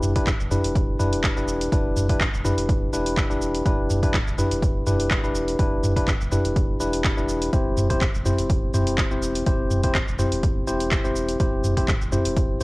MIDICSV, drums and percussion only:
0, 0, Header, 1, 2, 480
1, 0, Start_track
1, 0, Key_signature, 1, "minor"
1, 0, Tempo, 483871
1, 1708, Time_signature, 4, 2, 24, 8
1, 12532, End_track
2, 0, Start_track
2, 0, Title_t, "Drums"
2, 27, Note_on_c, 9, 45, 79
2, 30, Note_on_c, 9, 69, 89
2, 126, Note_off_c, 9, 45, 0
2, 129, Note_off_c, 9, 69, 0
2, 156, Note_on_c, 9, 42, 54
2, 157, Note_on_c, 9, 36, 64
2, 159, Note_on_c, 9, 69, 37
2, 255, Note_off_c, 9, 42, 0
2, 256, Note_off_c, 9, 36, 0
2, 258, Note_off_c, 9, 69, 0
2, 267, Note_on_c, 9, 39, 106
2, 267, Note_on_c, 9, 42, 44
2, 268, Note_on_c, 9, 36, 112
2, 270, Note_on_c, 9, 69, 52
2, 366, Note_off_c, 9, 39, 0
2, 366, Note_off_c, 9, 42, 0
2, 367, Note_off_c, 9, 36, 0
2, 369, Note_off_c, 9, 69, 0
2, 399, Note_on_c, 9, 69, 36
2, 498, Note_off_c, 9, 69, 0
2, 508, Note_on_c, 9, 45, 72
2, 510, Note_on_c, 9, 69, 91
2, 607, Note_off_c, 9, 45, 0
2, 609, Note_off_c, 9, 69, 0
2, 638, Note_on_c, 9, 42, 57
2, 641, Note_on_c, 9, 69, 41
2, 737, Note_off_c, 9, 42, 0
2, 740, Note_off_c, 9, 69, 0
2, 748, Note_on_c, 9, 36, 110
2, 750, Note_on_c, 9, 42, 46
2, 753, Note_on_c, 9, 69, 54
2, 848, Note_off_c, 9, 36, 0
2, 849, Note_off_c, 9, 42, 0
2, 852, Note_off_c, 9, 69, 0
2, 990, Note_on_c, 9, 45, 80
2, 992, Note_on_c, 9, 69, 87
2, 1089, Note_off_c, 9, 45, 0
2, 1091, Note_off_c, 9, 69, 0
2, 1118, Note_on_c, 9, 42, 56
2, 1121, Note_on_c, 9, 69, 37
2, 1217, Note_off_c, 9, 42, 0
2, 1220, Note_off_c, 9, 69, 0
2, 1228, Note_on_c, 9, 36, 116
2, 1229, Note_on_c, 9, 39, 109
2, 1229, Note_on_c, 9, 42, 45
2, 1232, Note_on_c, 9, 69, 50
2, 1327, Note_off_c, 9, 36, 0
2, 1328, Note_off_c, 9, 39, 0
2, 1328, Note_off_c, 9, 42, 0
2, 1331, Note_off_c, 9, 69, 0
2, 1361, Note_on_c, 9, 69, 38
2, 1460, Note_off_c, 9, 69, 0
2, 1471, Note_on_c, 9, 69, 94
2, 1571, Note_off_c, 9, 69, 0
2, 1599, Note_on_c, 9, 42, 55
2, 1602, Note_on_c, 9, 69, 38
2, 1699, Note_off_c, 9, 42, 0
2, 1701, Note_off_c, 9, 69, 0
2, 1708, Note_on_c, 9, 36, 122
2, 1711, Note_on_c, 9, 42, 43
2, 1713, Note_on_c, 9, 69, 54
2, 1807, Note_off_c, 9, 36, 0
2, 1810, Note_off_c, 9, 42, 0
2, 1813, Note_off_c, 9, 69, 0
2, 1949, Note_on_c, 9, 45, 77
2, 1952, Note_on_c, 9, 69, 93
2, 2049, Note_off_c, 9, 45, 0
2, 2051, Note_off_c, 9, 69, 0
2, 2077, Note_on_c, 9, 36, 68
2, 2078, Note_on_c, 9, 42, 54
2, 2081, Note_on_c, 9, 69, 41
2, 2176, Note_off_c, 9, 36, 0
2, 2177, Note_off_c, 9, 42, 0
2, 2180, Note_off_c, 9, 69, 0
2, 2188, Note_on_c, 9, 36, 115
2, 2191, Note_on_c, 9, 39, 114
2, 2191, Note_on_c, 9, 42, 42
2, 2193, Note_on_c, 9, 69, 52
2, 2287, Note_off_c, 9, 36, 0
2, 2290, Note_off_c, 9, 39, 0
2, 2290, Note_off_c, 9, 42, 0
2, 2293, Note_off_c, 9, 69, 0
2, 2322, Note_on_c, 9, 69, 38
2, 2421, Note_off_c, 9, 69, 0
2, 2431, Note_on_c, 9, 45, 76
2, 2434, Note_on_c, 9, 69, 96
2, 2530, Note_off_c, 9, 45, 0
2, 2533, Note_off_c, 9, 69, 0
2, 2559, Note_on_c, 9, 42, 54
2, 2562, Note_on_c, 9, 69, 41
2, 2658, Note_off_c, 9, 42, 0
2, 2661, Note_off_c, 9, 69, 0
2, 2668, Note_on_c, 9, 36, 118
2, 2670, Note_on_c, 9, 42, 45
2, 2673, Note_on_c, 9, 69, 54
2, 2767, Note_off_c, 9, 36, 0
2, 2770, Note_off_c, 9, 42, 0
2, 2772, Note_off_c, 9, 69, 0
2, 2912, Note_on_c, 9, 69, 95
2, 3011, Note_off_c, 9, 69, 0
2, 3038, Note_on_c, 9, 42, 54
2, 3041, Note_on_c, 9, 69, 39
2, 3137, Note_off_c, 9, 42, 0
2, 3140, Note_off_c, 9, 69, 0
2, 3148, Note_on_c, 9, 36, 123
2, 3151, Note_on_c, 9, 39, 108
2, 3151, Note_on_c, 9, 42, 42
2, 3153, Note_on_c, 9, 69, 53
2, 3247, Note_off_c, 9, 36, 0
2, 3250, Note_off_c, 9, 39, 0
2, 3250, Note_off_c, 9, 42, 0
2, 3252, Note_off_c, 9, 69, 0
2, 3281, Note_on_c, 9, 69, 38
2, 3381, Note_off_c, 9, 69, 0
2, 3391, Note_on_c, 9, 69, 95
2, 3491, Note_off_c, 9, 69, 0
2, 3519, Note_on_c, 9, 42, 52
2, 3522, Note_on_c, 9, 69, 38
2, 3618, Note_off_c, 9, 42, 0
2, 3621, Note_off_c, 9, 69, 0
2, 3628, Note_on_c, 9, 36, 121
2, 3629, Note_on_c, 9, 42, 42
2, 3632, Note_on_c, 9, 69, 54
2, 3727, Note_off_c, 9, 36, 0
2, 3728, Note_off_c, 9, 42, 0
2, 3731, Note_off_c, 9, 69, 0
2, 3869, Note_on_c, 9, 45, 81
2, 3872, Note_on_c, 9, 69, 95
2, 3968, Note_off_c, 9, 45, 0
2, 3971, Note_off_c, 9, 69, 0
2, 3996, Note_on_c, 9, 36, 69
2, 3998, Note_on_c, 9, 42, 51
2, 4001, Note_on_c, 9, 69, 40
2, 4095, Note_off_c, 9, 36, 0
2, 4097, Note_off_c, 9, 42, 0
2, 4100, Note_off_c, 9, 69, 0
2, 4107, Note_on_c, 9, 36, 120
2, 4109, Note_on_c, 9, 39, 104
2, 4109, Note_on_c, 9, 42, 41
2, 4111, Note_on_c, 9, 69, 52
2, 4207, Note_off_c, 9, 36, 0
2, 4208, Note_off_c, 9, 39, 0
2, 4208, Note_off_c, 9, 42, 0
2, 4211, Note_off_c, 9, 69, 0
2, 4241, Note_on_c, 9, 69, 39
2, 4340, Note_off_c, 9, 69, 0
2, 4348, Note_on_c, 9, 45, 77
2, 4351, Note_on_c, 9, 69, 92
2, 4447, Note_off_c, 9, 45, 0
2, 4450, Note_off_c, 9, 69, 0
2, 4478, Note_on_c, 9, 42, 55
2, 4481, Note_on_c, 9, 69, 41
2, 4577, Note_off_c, 9, 42, 0
2, 4580, Note_off_c, 9, 69, 0
2, 4588, Note_on_c, 9, 36, 119
2, 4590, Note_on_c, 9, 42, 43
2, 4592, Note_on_c, 9, 69, 55
2, 4687, Note_off_c, 9, 36, 0
2, 4689, Note_off_c, 9, 42, 0
2, 4692, Note_off_c, 9, 69, 0
2, 4828, Note_on_c, 9, 45, 89
2, 4831, Note_on_c, 9, 69, 97
2, 4927, Note_off_c, 9, 45, 0
2, 4930, Note_off_c, 9, 69, 0
2, 4959, Note_on_c, 9, 42, 51
2, 4961, Note_on_c, 9, 69, 42
2, 5058, Note_off_c, 9, 42, 0
2, 5060, Note_off_c, 9, 69, 0
2, 5068, Note_on_c, 9, 36, 125
2, 5069, Note_on_c, 9, 39, 108
2, 5069, Note_on_c, 9, 42, 41
2, 5072, Note_on_c, 9, 69, 52
2, 5167, Note_off_c, 9, 36, 0
2, 5168, Note_off_c, 9, 39, 0
2, 5168, Note_off_c, 9, 42, 0
2, 5171, Note_off_c, 9, 69, 0
2, 5200, Note_on_c, 9, 69, 39
2, 5299, Note_off_c, 9, 69, 0
2, 5311, Note_on_c, 9, 69, 101
2, 5410, Note_off_c, 9, 69, 0
2, 5438, Note_on_c, 9, 42, 49
2, 5441, Note_on_c, 9, 69, 39
2, 5537, Note_off_c, 9, 42, 0
2, 5540, Note_off_c, 9, 69, 0
2, 5548, Note_on_c, 9, 36, 117
2, 5549, Note_on_c, 9, 42, 44
2, 5551, Note_on_c, 9, 69, 53
2, 5647, Note_off_c, 9, 36, 0
2, 5648, Note_off_c, 9, 42, 0
2, 5651, Note_off_c, 9, 69, 0
2, 5789, Note_on_c, 9, 45, 86
2, 5792, Note_on_c, 9, 69, 95
2, 5888, Note_off_c, 9, 45, 0
2, 5891, Note_off_c, 9, 69, 0
2, 5916, Note_on_c, 9, 36, 64
2, 5919, Note_on_c, 9, 42, 54
2, 5922, Note_on_c, 9, 69, 41
2, 6015, Note_off_c, 9, 36, 0
2, 6018, Note_off_c, 9, 42, 0
2, 6021, Note_off_c, 9, 69, 0
2, 6028, Note_on_c, 9, 36, 111
2, 6030, Note_on_c, 9, 39, 101
2, 6030, Note_on_c, 9, 42, 41
2, 6032, Note_on_c, 9, 69, 55
2, 6127, Note_off_c, 9, 36, 0
2, 6129, Note_off_c, 9, 39, 0
2, 6129, Note_off_c, 9, 42, 0
2, 6132, Note_off_c, 9, 69, 0
2, 6161, Note_on_c, 9, 69, 36
2, 6260, Note_off_c, 9, 69, 0
2, 6268, Note_on_c, 9, 45, 80
2, 6271, Note_on_c, 9, 69, 89
2, 6368, Note_off_c, 9, 45, 0
2, 6370, Note_off_c, 9, 69, 0
2, 6398, Note_on_c, 9, 42, 55
2, 6401, Note_on_c, 9, 69, 42
2, 6497, Note_off_c, 9, 42, 0
2, 6500, Note_off_c, 9, 69, 0
2, 6508, Note_on_c, 9, 36, 118
2, 6510, Note_on_c, 9, 42, 46
2, 6512, Note_on_c, 9, 69, 54
2, 6607, Note_off_c, 9, 36, 0
2, 6609, Note_off_c, 9, 42, 0
2, 6612, Note_off_c, 9, 69, 0
2, 6751, Note_on_c, 9, 69, 93
2, 6850, Note_off_c, 9, 69, 0
2, 6877, Note_on_c, 9, 42, 54
2, 6880, Note_on_c, 9, 69, 40
2, 6976, Note_off_c, 9, 42, 0
2, 6979, Note_off_c, 9, 69, 0
2, 6988, Note_on_c, 9, 36, 125
2, 6989, Note_on_c, 9, 39, 98
2, 6989, Note_on_c, 9, 42, 41
2, 6991, Note_on_c, 9, 69, 52
2, 7087, Note_off_c, 9, 36, 0
2, 7088, Note_off_c, 9, 39, 0
2, 7088, Note_off_c, 9, 42, 0
2, 7091, Note_off_c, 9, 69, 0
2, 7120, Note_on_c, 9, 69, 38
2, 7220, Note_off_c, 9, 69, 0
2, 7230, Note_on_c, 9, 69, 96
2, 7329, Note_off_c, 9, 69, 0
2, 7358, Note_on_c, 9, 42, 55
2, 7360, Note_on_c, 9, 69, 39
2, 7457, Note_off_c, 9, 42, 0
2, 7460, Note_off_c, 9, 69, 0
2, 7468, Note_on_c, 9, 36, 110
2, 7469, Note_on_c, 9, 42, 44
2, 7472, Note_on_c, 9, 69, 52
2, 7568, Note_off_c, 9, 36, 0
2, 7568, Note_off_c, 9, 42, 0
2, 7571, Note_off_c, 9, 69, 0
2, 7708, Note_on_c, 9, 45, 86
2, 7711, Note_on_c, 9, 69, 91
2, 7807, Note_off_c, 9, 45, 0
2, 7810, Note_off_c, 9, 69, 0
2, 7837, Note_on_c, 9, 36, 60
2, 7837, Note_on_c, 9, 42, 53
2, 7840, Note_on_c, 9, 69, 38
2, 7936, Note_off_c, 9, 36, 0
2, 7937, Note_off_c, 9, 42, 0
2, 7939, Note_off_c, 9, 69, 0
2, 7948, Note_on_c, 9, 39, 99
2, 7948, Note_on_c, 9, 42, 43
2, 7949, Note_on_c, 9, 36, 111
2, 7951, Note_on_c, 9, 69, 55
2, 8047, Note_off_c, 9, 39, 0
2, 8047, Note_off_c, 9, 42, 0
2, 8048, Note_off_c, 9, 36, 0
2, 8050, Note_off_c, 9, 69, 0
2, 8080, Note_on_c, 9, 69, 38
2, 8179, Note_off_c, 9, 69, 0
2, 8189, Note_on_c, 9, 45, 82
2, 8191, Note_on_c, 9, 69, 88
2, 8288, Note_off_c, 9, 45, 0
2, 8291, Note_off_c, 9, 69, 0
2, 8317, Note_on_c, 9, 42, 57
2, 8320, Note_on_c, 9, 69, 41
2, 8416, Note_off_c, 9, 42, 0
2, 8419, Note_off_c, 9, 69, 0
2, 8429, Note_on_c, 9, 36, 113
2, 8429, Note_on_c, 9, 42, 47
2, 8432, Note_on_c, 9, 69, 54
2, 8528, Note_off_c, 9, 36, 0
2, 8529, Note_off_c, 9, 42, 0
2, 8531, Note_off_c, 9, 69, 0
2, 8670, Note_on_c, 9, 45, 96
2, 8672, Note_on_c, 9, 69, 86
2, 8769, Note_off_c, 9, 45, 0
2, 8772, Note_off_c, 9, 69, 0
2, 8799, Note_on_c, 9, 42, 53
2, 8801, Note_on_c, 9, 69, 37
2, 8898, Note_off_c, 9, 42, 0
2, 8900, Note_off_c, 9, 69, 0
2, 8909, Note_on_c, 9, 36, 115
2, 8909, Note_on_c, 9, 39, 98
2, 8909, Note_on_c, 9, 42, 43
2, 8912, Note_on_c, 9, 69, 52
2, 9008, Note_off_c, 9, 36, 0
2, 9009, Note_off_c, 9, 39, 0
2, 9009, Note_off_c, 9, 42, 0
2, 9011, Note_off_c, 9, 69, 0
2, 9040, Note_on_c, 9, 69, 36
2, 9139, Note_off_c, 9, 69, 0
2, 9152, Note_on_c, 9, 69, 91
2, 9252, Note_off_c, 9, 69, 0
2, 9279, Note_on_c, 9, 42, 54
2, 9282, Note_on_c, 9, 69, 39
2, 9378, Note_off_c, 9, 42, 0
2, 9381, Note_off_c, 9, 69, 0
2, 9389, Note_on_c, 9, 36, 108
2, 9389, Note_on_c, 9, 42, 47
2, 9391, Note_on_c, 9, 69, 51
2, 9488, Note_off_c, 9, 36, 0
2, 9488, Note_off_c, 9, 42, 0
2, 9491, Note_off_c, 9, 69, 0
2, 9628, Note_on_c, 9, 45, 79
2, 9630, Note_on_c, 9, 69, 82
2, 9727, Note_off_c, 9, 45, 0
2, 9730, Note_off_c, 9, 69, 0
2, 9757, Note_on_c, 9, 42, 57
2, 9758, Note_on_c, 9, 36, 60
2, 9759, Note_on_c, 9, 69, 36
2, 9856, Note_off_c, 9, 42, 0
2, 9857, Note_off_c, 9, 36, 0
2, 9858, Note_off_c, 9, 69, 0
2, 9869, Note_on_c, 9, 36, 103
2, 9869, Note_on_c, 9, 39, 98
2, 9869, Note_on_c, 9, 42, 44
2, 9872, Note_on_c, 9, 69, 50
2, 9968, Note_off_c, 9, 36, 0
2, 9969, Note_off_c, 9, 39, 0
2, 9969, Note_off_c, 9, 42, 0
2, 9971, Note_off_c, 9, 69, 0
2, 9999, Note_on_c, 9, 69, 35
2, 10098, Note_off_c, 9, 69, 0
2, 10108, Note_on_c, 9, 45, 75
2, 10111, Note_on_c, 9, 69, 85
2, 10207, Note_off_c, 9, 45, 0
2, 10210, Note_off_c, 9, 69, 0
2, 10237, Note_on_c, 9, 42, 58
2, 10240, Note_on_c, 9, 69, 38
2, 10337, Note_off_c, 9, 42, 0
2, 10339, Note_off_c, 9, 69, 0
2, 10349, Note_on_c, 9, 36, 112
2, 10349, Note_on_c, 9, 42, 50
2, 10352, Note_on_c, 9, 69, 53
2, 10448, Note_off_c, 9, 36, 0
2, 10449, Note_off_c, 9, 42, 0
2, 10451, Note_off_c, 9, 69, 0
2, 10591, Note_on_c, 9, 69, 90
2, 10690, Note_off_c, 9, 69, 0
2, 10717, Note_on_c, 9, 42, 57
2, 10720, Note_on_c, 9, 69, 37
2, 10817, Note_off_c, 9, 42, 0
2, 10819, Note_off_c, 9, 69, 0
2, 10828, Note_on_c, 9, 39, 94
2, 10828, Note_on_c, 9, 42, 44
2, 10829, Note_on_c, 9, 36, 115
2, 10831, Note_on_c, 9, 69, 48
2, 10927, Note_off_c, 9, 39, 0
2, 10927, Note_off_c, 9, 42, 0
2, 10928, Note_off_c, 9, 36, 0
2, 10930, Note_off_c, 9, 69, 0
2, 10959, Note_on_c, 9, 69, 36
2, 11058, Note_off_c, 9, 69, 0
2, 11069, Note_on_c, 9, 69, 93
2, 11169, Note_off_c, 9, 69, 0
2, 11196, Note_on_c, 9, 42, 56
2, 11198, Note_on_c, 9, 69, 36
2, 11295, Note_off_c, 9, 42, 0
2, 11297, Note_off_c, 9, 69, 0
2, 11309, Note_on_c, 9, 36, 109
2, 11309, Note_on_c, 9, 42, 45
2, 11311, Note_on_c, 9, 69, 51
2, 11408, Note_off_c, 9, 36, 0
2, 11408, Note_off_c, 9, 42, 0
2, 11411, Note_off_c, 9, 69, 0
2, 11547, Note_on_c, 9, 45, 79
2, 11550, Note_on_c, 9, 69, 86
2, 11647, Note_off_c, 9, 45, 0
2, 11649, Note_off_c, 9, 69, 0
2, 11677, Note_on_c, 9, 36, 60
2, 11678, Note_on_c, 9, 42, 57
2, 11681, Note_on_c, 9, 69, 36
2, 11776, Note_off_c, 9, 36, 0
2, 11777, Note_off_c, 9, 42, 0
2, 11780, Note_off_c, 9, 69, 0
2, 11788, Note_on_c, 9, 36, 108
2, 11789, Note_on_c, 9, 39, 98
2, 11789, Note_on_c, 9, 42, 46
2, 11792, Note_on_c, 9, 69, 52
2, 11888, Note_off_c, 9, 36, 0
2, 11889, Note_off_c, 9, 39, 0
2, 11889, Note_off_c, 9, 42, 0
2, 11891, Note_off_c, 9, 69, 0
2, 11920, Note_on_c, 9, 69, 33
2, 12019, Note_off_c, 9, 69, 0
2, 12028, Note_on_c, 9, 45, 73
2, 12031, Note_on_c, 9, 69, 86
2, 12127, Note_off_c, 9, 45, 0
2, 12130, Note_off_c, 9, 69, 0
2, 12156, Note_on_c, 9, 42, 60
2, 12159, Note_on_c, 9, 69, 39
2, 12255, Note_off_c, 9, 42, 0
2, 12258, Note_off_c, 9, 69, 0
2, 12268, Note_on_c, 9, 36, 112
2, 12268, Note_on_c, 9, 42, 48
2, 12271, Note_on_c, 9, 69, 52
2, 12367, Note_off_c, 9, 36, 0
2, 12367, Note_off_c, 9, 42, 0
2, 12370, Note_off_c, 9, 69, 0
2, 12532, End_track
0, 0, End_of_file